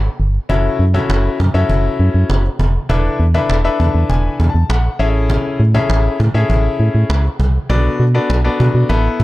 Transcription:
0.05 cajon slap
0.20 G1
0.34 cajon slap
0.49 F#1 C#4 E4 F#4 A4 E5, cajon bass
0.65 cajon slap
0.79 F#2, cajon slap
0.94 C#4 E4 F#4 A4 E5, cajon bass
1.10 F#1, cajon slap
1.25 cajon slap
1.40 F#2, cajon bass
1.54 F#2 C#4 E4 F#4 A4 E5, cajon slap
1.69 F#1, cajon bass, cajon slap
1.85 cajon slap
1.99 F#2, cajon slap
2.14 F#2, cajon slap
2.30 F#1, cajon slap
2.44 cajon slap
2.59 F1, cajon bass
2.74 cajon slap
2.89 E1 D4 E4 A4 B4 E5, cajon bass
3.04 cajon slap
3.20 E2, cajon slap
3.34 D4 E4 A4 B4 E5, cajon bass
3.50 E1, cajon slap
3.64 D4 E4 A4 B4 E5, cajon slap
3.79 E2 A5, cajon bass
3.94 E2, cajon slap
4.10 E1 G#5, cajon bass, cajon slap
4.25 cajon slap
4.40 E2, cajon bass
4.50 A5
4.55 E2, cajon slap
4.69 A#1 F#5, cajon slap
4.85 cajon slap
4.99 A1 C#4 E4 G#4 A4 E5, cajon slap
5.10 E5
5.14 cajon slap
5.30 cajon bass
5.44 cajon slap
5.60 A2, cajon slap
5.74 C#4 E4 G#4 A4 E5, cajon bass
5.90 A1, cajon slap
6.05 cajon slap
6.20 A2, cajon bass
6.34 A2 C#4 E4 G#4 A4 E5, cajon slap
6.50 A1, cajon bass, cajon slap
6.65 cajon slap
6.79 A2, cajon slap
6.95 A2, cajon slap
7.10 C#2, cajon slap
7.25 cajon slap
7.40 C2, cajon bass
7.54 cajon slap
7.69 B1 B3 D4 F#4 A4 D5, cajon bass
7.84 cajon slap
8.00 B2, cajon slap
8.14 B3 D4 F#4 A4 D5, cajon slap
8.30 B1, cajon slap
8.44 B3 D4 F#4 A4 D5, cajon slap
8.60 B2, cajon bass
8.75 B2, cajon slap
8.89 A1 B3 E4 A4, cajon bass, cajon slap
9.05 cajon slap
9.20 A2, cajon bass

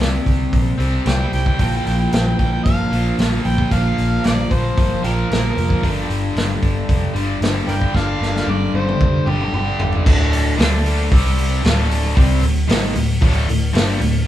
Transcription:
Already playing: C3 G3 C4
0.00 C2, snare, open hi-hat
0.26 C2, kick, open hi-hat
0.53 A#1, kick, open hi-hat
0.78 C2 C3 G3 C4, open hi-hat
1.04 C2 C3 G3 C4 E4 G5, snare, open hi-hat
1.18 E4 G5
1.33 C2 E4 G5, open hi-hat
1.46 E4 G5, kick
1.59 A#1 A#2 F3 A#3 D4 G5, kick, open hi-hat
1.74 E4 G5
1.86 A#1 E4 G5, open hi-hat
2.00 E4 G5
2.12 A#1 D4 G5, snare, open hi-hat
2.25 E4 G5
2.39 A#1 E4 G5, kick, open hi-hat
2.52 E4 G5
2.63 G1 D4 F5, kick, open hi-hat
2.91 A#1 A#2 F3 A#3, open hi-hat
3.18 A#1 A#2 F3 A#3, snare, open hi-hat
3.45 A#1 E4 G5, open hi-hat
3.58 kick
3.71 A#1 A#2 F3 A#3 D4 F5, kick, open hi-hat
3.98 A#1, open hi-hat
4.24 A#1 A#3 D5, snare, open hi-hat
4.51 A#1 F3 C5, kick, open hi-hat
4.78 G1, kick, open hi-hat
5.03 A#1 A#2 F3 A#3 D4 G4 A#4, open hi-hat
5.29 A#1 A#2 F3 A#3, snare, open hi-hat
5.57 F1, open hi-hat
5.70 kick
5.83 G1 G2 D3 G3, kick, open hi-hat
6.10 G1, open hi-hat
6.36 G1, snare, open hi-hat
6.63 G1, kick, open hi-hat
6.89 F1, kick, open hi-hat
7.14 G1 G2 D3 G3, open hi-hat
7.41 G1 G2 D3 G3, snare, open hi-hat
7.67 G1 E4 A#4 D5 G5, open hi-hat
7.82 kick
7.94 G1 G2 D3 G3 D4 F5, kick, snare
8.21 G1, snare
8.36 snare
8.47 G1 A#3 D5, high tom
8.74 G1 G3 C5, high tom
8.88 mid tom
9.01 F1, kick, mid tom
9.26 G1 G2 D3 G3 G4, mid tom
9.41 mid tom
9.53 G1 G2 D3 G3, mid tom
9.79 G1, floor tom
9.92 floor tom
10.05 D1 D2 A2 D3, kick, crash
10.33 open hi-hat
10.58 D2 D3 A3 D4, snare, open hi-hat
10.86 open hi-hat
11.11 C2 C3 G3 C4, kick, open hi-hat
11.38 open hi-hat
11.64 D1 D2 A2 D3, snare, open hi-hat
11.91 open hi-hat
12.16 C2 C3 G3 C4, kick, open hi-hat
12.42 D1 D2 A2, open hi-hat
12.67 G#1 G#2 D#3 G#3, snare, open hi-hat
12.95 D1 D2 A2, open hi-hat
13.21 D1 D2 A2 D3, kick, open hi-hat
13.48 D1 D2 A2, open hi-hat
13.73 G1 G2 D3 G3, snare, open hi-hat
14.01 D1 D2 A2, open hi-hat

